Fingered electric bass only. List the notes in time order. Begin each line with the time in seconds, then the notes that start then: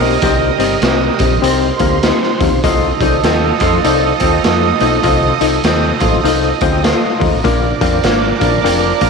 0.00 B1
0.23 C2
0.59 G1
0.82 C2
1.21 A#1
1.43 C2
1.80 D2
2.41 D#2
2.52 B1
2.64 C2
3.00 C2
3.23 D#2
3.61 F2
3.85 C2
4.21 D#2
4.45 F2
4.81 B1
5.04 C2
5.41 C2
5.64 D#2
6.02 A1
6.24 C2
6.62 D2
7.22 D#2
7.33 A1
7.45 A#1
7.82 F2
8.04 G#1
8.41 A#1
8.65 F1
9.02 A#1